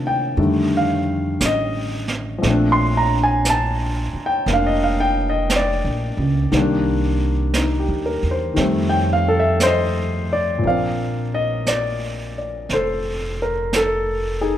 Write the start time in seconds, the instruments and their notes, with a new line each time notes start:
Already playing: upright bass C3, grand piano D#3 F3 A#3 D4 A5
0.07 grand piano G5
0.37 upright bass F2, grand piano D3 D#3 G3 A3, brush sweep
0.77 grand piano F5
1.41 upright bass A1, brush sweep, snare, hi-hat pedal
1.46 grand piano D#5
2.08 snare
2.38 grand piano F3 A3
2.43 upright bass A#1, grand piano C4, brush sweep, snare
2.50 grand piano D4
2.72 grand piano C6
2.97 grand piano A#5
3.23 grand piano G#5
3.45 brush sweep, snare, hi-hat pedal
3.50 grand piano A5
4.13 muted upright bass stroke
4.26 grand piano G5
4.46 upright bass F1, grand piano A#3, brush sweep, snare
4.51 grand piano D4 F5
4.67 grand piano D#5
4.84 grand piano F5
5.00 grand piano G5
5.29 grand piano D#5
5.50 brush sweep, snare, hi-hat pedal
5.56 grand piano D5
5.84 upright bass A#1
6.17 upright bass C#2
6.51 upright bass C2, grand piano D#3 G3 A#3, brush sweep, snare
6.57 grand piano D4
7.54 grand piano D#4, brush sweep, snare, hi-hat pedal
7.80 grand piano G4
7.88 upright bass D#2
8.06 grand piano A#4
8.23 upright bass E2
8.31 grand piano C5
8.54 upright bass F2, grand piano D#3 G3 A3, brush sweep, snare
8.59 grand piano C4
8.89 grand piano G5
9.13 grand piano F5
9.28 grand piano A4
9.40 grand piano E5
9.60 grand piano C5, brush sweep, snare, hi-hat pedal
9.66 grand piano D#5
10.33 grand piano D5
10.58 grand piano A#2 F3
10.63 upright bass A#1, grand piano A#3, brush sweep
10.67 grand piano C4 D5 F5
11.34 grand piano D#5
11.66 grand piano D5, brush sweep, snare, hi-hat pedal
12.38 grand piano D5
12.69 upright bass F1, grand piano C5, brush sweep, snare
12.74 grand piano A4
13.42 grand piano A#4
13.73 grand piano A4, brush sweep, snare, hi-hat pedal
14.41 grand piano D#4 G#4